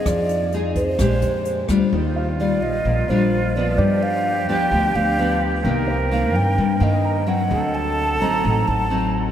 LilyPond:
<<
  \new Staff \with { instrumentName = "Ocarina" } { \time 4/4 \key bes \mixolydian \tempo 4 = 129 d''4 r8 c''2 r8 | \key ees \major r4 d''8 ees''4 c''4 d''8~ | d''8 f''4 g''4 f''4 r8 | r4 f''8 g''4 ees''4 ges''8~ |
ges''8 a''4 bes''4 a''4 r8 | }
  \new Staff \with { instrumentName = "Grand piano" } { \time 4/4 \key bes \mixolydian r1 | \key ees \major r8 f''2.~ f''8 | d''1 | r8 c''2~ c''8 bes''4 |
r1 | }
  \new Staff \with { instrumentName = "Flute" } { \time 4/4 \key bes \mixolydian r1 | \key ees \major f'1 | g'1 | bes'2.~ bes'8 r8 |
a'2.~ a'8 r8 | }
  \new Staff \with { instrumentName = "Nylon-string guitar" } { \time 4/4 \key bes \mixolydian << { <c' ees' aes'>4 <c' ees' aes'>4 <aes d' g'>4. <g d' f'>8~ | \key ees \major <g d' f'>4 <g f'>4. <g d' f'>4 <f ces' d'>8~ | <f ces' d'>4. <f b d'>4. <f b d'>4 | <ees bes d'>8 r8 <ees bes d'>4 r8 <ees bes>4 <ges c'>8~ |
<ges c'>4. <fis c' ees'>4. <fis c' ees'>4 | } \\ { f2 bes,2 | ees2 bes,2 | g,2 d2 | c2 g,2 |
d2 a,2 | } >> }
  \new Staff \with { instrumentName = "Upright bass" } { \clef bass \time 4/4 \key bes \mixolydian f,2 bes,,8 f,4 d,16 r16 | \key ees \major ees,4. bes,,8 bes,,8 bes,,4. | g,4. d,8 d,8 d,4. | c,4. g,8 g,8 g,4. |
d,4. a,,8 a,,8 a,,4. | }
  \new DrumStaff \with { instrumentName = "Drums" } \drummode { \time 4/4 <hh bd ss>8 hh8 hh8 <hh bd>8 <hh bd ss>8 hh8 hh8 <hh bd ss>8 | r4 r4 r4 r4 | r4 r4 r4 r4 | r4 r4 r4 r4 |
r4 r4 r4 r4 | }
>>